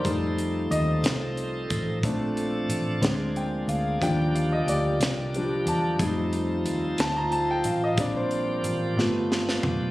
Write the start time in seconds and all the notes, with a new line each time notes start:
Already playing: D5
0.04 F2 F3 G3 A3 C4 D#4 F4 A4, kick, closed hi-hat
0.38 closed hi-hat
0.71 D#2 D#5, closed hi-hat
1.03 C2, snare, closed hi-hat
1.37 closed hi-hat
1.70 A1, kick, closed hi-hat
2.03 A#1 F3 A3 C4 D4 A4, kick, closed hi-hat
2.37 closed hi-hat
2.69 A1, closed hi-hat
3.01 D2 F3 G#3 A#3 C4 D4 G#4, snare, closed hi-hat
3.36 G5, closed hi-hat
3.68 D2 F5, closed hi-hat
4.01 D#2 D3 F3 G3 A#3 D4 G4 G5, kick, closed hi-hat
4.35 F5, closed hi-hat
4.52 D#5
4.66 D2 D5, closed hi-hat
5.00 C2, snare, closed hi-hat
5.34 F3 G3 D4, closed hi-hat
5.66 E2 A5, closed hi-hat
5.99 F2 F3 G3 A3 C4 D#4 F4 G#4, kick, closed hi-hat
6.08 A4
6.33 closed hi-hat
6.65 D#2, closed hi-hat
6.98 D2 A5, snare, closed hi-hat
7.17 A#5
7.32 A5, closed hi-hat
7.51 G5
7.64 A1 F5, closed hi-hat
7.84 D#5
7.98 A#1 F3 G3 A#3 C4 D4 F4 G4 D5, kick, closed hi-hat
8.16 C5
8.31 closed hi-hat
8.64 A1, closed hi-hat
8.96 G1 F3 A3 B3 D4 F4 G4, snare
9.32 snare
9.49 snare
9.63 B1, floor tom